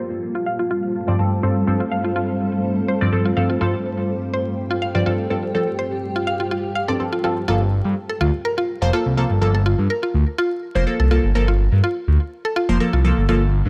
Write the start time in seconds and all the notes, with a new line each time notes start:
Already playing: G2 G3 A3 C4 F4 C5 F5 A5
0.35 F4 A4
0.46 F5
0.59 F4
0.71 F4
1.08 G2 F3 C4 D5
1.19 G2 F3 C4 A4
1.43 G2 F3 C4 A4 C5
1.67 G2 F3 C4 A4
1.80 F4
1.92 F5
2.05 F4
2.16 F4
2.88 C5
3.01 G2 F3 C4 D5
3.12 G2 F3 C4 A4
3.25 F4
3.37 G2 F3 C4 A4 F5
3.50 F4
3.59 G2 F3 C4 F4 A4 G5
4.33 C5
4.51 G4
4.71 F4
4.82 F5
4.95 G2 F3 C4 F4 D5
5.06 G2 F3 C4 F4 A4
5.30 G2 F3 C4 A4
5.54 G2 F3 C4 A4
5.79 C5
6.16 F4
6.27 F5
6.40 F4
6.51 F4
6.75 F5
6.88 G2 F3 C4 A4 D5
7.00 G2 F3 C4 A4
7.13 F4
7.24 G2 F3 C4 F4 A4
7.48 G1 F3 A#3 F4 A4
7.85 G2
8.09 A4
8.21 D2 F4
8.45 A#4
8.58 F4
8.82 F1 F3 A#3 C5
8.93 F3 A#3 F4 A4
9.06 C2
9.17 F3 A#3 A4
9.30 G1
9.41 G1 F3 A#3 A4
9.55 A4
9.66 F4
9.79 G2
9.90 A#4
10.03 F4
10.14 D2
10.38 F4
10.75 F1 F3 A#3 C5
10.87 F3 A#3 A4
11.00 C2 A4
11.11 F3 A#3 F4 A4
11.24 G1
11.35 G1 F3 A#3 A4 A#4
11.48 F4
11.72 G2
11.84 F4
12.08 D2
12.45 A4
12.56 F4
12.69 F1 F3 A#3 C5
12.80 F3 A#3 A4 A#4
12.93 C2 F4
13.04 F3 A#3 A4
13.17 G1
13.29 G1 F3 A#3 F4 A4
13.66 G2